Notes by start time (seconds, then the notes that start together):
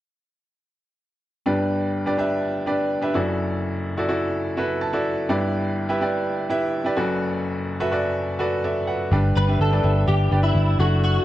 1.46 G1 G2 D4 G4 B4 D5
2.06 D4 G4 B4 D5
2.17 D4 G4 B4 E5
2.66 D4 G4 B4 D5
3.02 D4 G4 B4 E5
3.14 F#1 F#2 E4 F#4 A4 D5
3.97 E4 F#4 A4 D5
4.08 E4 F#4 A4 D5
4.57 E4 F#4 A4 B4
4.81 A5
4.93 E4 F#4 A4 D5
5.29 G1 G2 E4 G4 B4 D5
5.89 E4 G4 B4 E5
6.01 E4 G4 B4 D5
6.49 E4 G4 B4 E5
6.84 E4 G4 B4 D5
6.97 F#1 F#2 F#4 A4 B4 D5
7.80 F#4 A4 B4 E5
7.92 F#4 A4 B4 D5
8.39 F#4 A4 B4 D5
8.64 A4 D5 E5
8.87 B4 F#5
9.11 G1 G2 D4 G4 B4 D5
9.36 G1 B4
9.48 D4 G4 B4 E5
9.60 G1 A4
9.72 D4 G4 B4 D5
9.83 G1 D4 G4 B4 E5
10.08 G1 G4
10.31 G1 D4 G4 B4 D5
10.43 E4
10.55 G1
10.78 F#1 D4 E4 F#4 A4
11.04 F#4